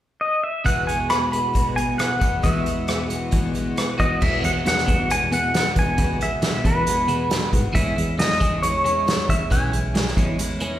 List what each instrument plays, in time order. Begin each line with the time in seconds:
0.21 pedal steel guitar D#5
0.43 pedal steel guitar E5
0.65 twelve-string acoustic guitar E2 B2 E3 G#3 B3 F#4, fingered electric bass E2, pedal steel guitar F#5, kick, closed hi-hat
0.86 twelve-string acoustic guitar E3 G#3 B3 F#4, pedal steel guitar G#5, closed hi-hat
1.09 twelve-string acoustic guitar E3 G#3 B3 F#4, pedal steel guitar B5, cross-stick, closed hi-hat
1.30 twelve-string acoustic guitar E3 G#3 B3 F#4, pedal steel guitar B5, closed hi-hat
1.53 fingered electric bass C#2, twelve-string acoustic guitar E2 B2 E3 G#3 B3 F#4, kick, closed hi-hat
1.75 twelve-string acoustic guitar E3 G#3 B3 F#4, pedal steel guitar G#5, closed hi-hat
1.97 twelve-string acoustic guitar E3 G#3 B3 F#4, pedal steel guitar F#5, cross-stick, closed hi-hat
2.20 fingered electric bass E2, clean electric guitar E2 B2, twelve-string acoustic guitar E3 G#3 B3 F#4, kick, closed hi-hat
2.42 twelve-string acoustic guitar E2 B2 E3 G#3 B3 F#4, fingered electric bass E2, pedal steel guitar E5, kick, closed hi-hat
2.64 twelve-string acoustic guitar E3 G#3 B3 F#4, closed hi-hat
2.87 twelve-string acoustic guitar E3 G#3 B3 F#4, cross-stick, closed hi-hat
3.09 twelve-string acoustic guitar E3 G#3 B3 F#4, closed hi-hat
3.31 twelve-string acoustic guitar E2 B2 E3 G#3 B3 F#4, fingered electric bass E3, kick, closed hi-hat
3.54 twelve-string acoustic guitar E3 G#3 B3 F#4, closed hi-hat
3.76 twelve-string acoustic guitar E3 G#3 B3 F#4, cross-stick, closed hi-hat
3.98 fingered electric bass E2, clean electric guitar E2 B2, twelve-string acoustic guitar E3 G#3 B3 F#4, pedal steel guitar D#5, kick, closed hi-hat
4.21 twelve-string acoustic guitar E2 B2 E3 G#3 B3 F#4, fingered electric bass E2, pedal steel guitar E5, kick, crash
4.43 clean electric guitar E2 B2, fingered electric bass E2, twelve-string acoustic guitar E3 G#3 B3 F#4, pedal steel guitar F#5, closed hi-hat
4.65 clean electric guitar E2 B2, twelve-string acoustic guitar E3 G#3 B3 F#4, pedal steel guitar F#5, snare, closed hi-hat
4.78 snare
4.87 clean electric guitar E2 B2, fingered electric bass E2, twelve-string acoustic guitar E3 G#3 B3 F#4, kick, closed hi-hat
5.10 twelve-string acoustic guitar E2 B2 E3 G#3 B3 F#4, pedal steel guitar G#5, closed hi-hat
5.31 clean electric guitar E2 B2, twelve-string acoustic guitar E3 G#3 B3 F#4, pedal steel guitar F#5, closed hi-hat
5.54 clean electric guitar E2, twelve-string acoustic guitar E3 G#3 B3 F#4, snare, closed hi-hat
5.76 clean electric guitar E2 B2, fingered electric bass E2, twelve-string acoustic guitar E3 G#3 B3 F#4, pedal steel guitar G#5, kick, closed hi-hat
5.98 fingered electric bass C#2, twelve-string acoustic guitar E2 B2 E3 G#3 B3 F#4, kick, closed hi-hat
6.20 clean electric guitar E2 B2, twelve-string acoustic guitar E3 G#3 B3 F#4, pedal steel guitar E5, closed hi-hat
6.41 clean electric guitar E2 B2, twelve-string acoustic guitar E3 G#3 B3 F#4, snare, closed hi-hat
6.64 clean electric guitar E2 B2, fingered electric bass E2, twelve-string acoustic guitar E3 G#3 B3 F#4, pedal steel guitar B4, kick, closed hi-hat
6.86 twelve-string acoustic guitar E2 B2 E3 G#3 B3 F#4, closed hi-hat
7.08 clean electric guitar E2 B2, twelve-string acoustic guitar E3 G#3 B3 F#4, closed hi-hat
7.30 clean electric guitar E2, twelve-string acoustic guitar E3 G#3 B3 F#4, snare, closed hi-hat
7.52 clean electric guitar E2 B2, fingered electric bass G#2, twelve-string acoustic guitar E3 G#3 B3 F#4, kick, closed hi-hat
7.75 fingered electric bass E2, twelve-string acoustic guitar E3 G#3 C#4 E4, pedal steel guitar E5, kick, closed hi-hat
7.95 fingered electric bass E2, clean electric guitar E3, twelve-string acoustic guitar G#3 C#4 E4, closed hi-hat
8.17 twelve-string acoustic guitar E3 G#3 C#4 E4, pedal steel guitar D#5, snare, closed hi-hat
8.31 snare
8.40 fingered electric bass E2, clean electric guitar E3, twelve-string acoustic guitar G#3 C#4 E4, kick, closed hi-hat
8.63 twelve-string acoustic guitar E3 G#3 C#4 E4, pedal steel guitar C#5, closed hi-hat
8.84 clean electric guitar E3, twelve-string acoustic guitar G#3 C#4 E4, closed hi-hat
9.06 twelve-string acoustic guitar E3 G#3 C#4 E4, snare, closed hi-hat
9.28 fingered electric bass E2, clean electric guitar E3, twelve-string acoustic guitar G#3 C#4 E4, pedal steel guitar E5, kick, closed hi-hat
9.50 fingered electric bass B1, twelve-string acoustic guitar E3 G#3 C#4 E4, pedal steel guitar G#5, kick, closed hi-hat
9.72 clean electric guitar E3, twelve-string acoustic guitar G#3 C#4 E4, closed hi-hat
9.94 twelve-string acoustic guitar E3 G#3 C#4 E4, snare, closed hi-hat
10.07 snare
10.16 fingered electric bass E2, clean electric guitar E3, twelve-string acoustic guitar G#3 C#4 E4, kick, closed hi-hat
10.39 twelve-string acoustic guitar E3 G#3 C#4 E4, closed hi-hat
10.60 clean electric guitar E3, twelve-string acoustic guitar G#3 C#4 E4, closed hi-hat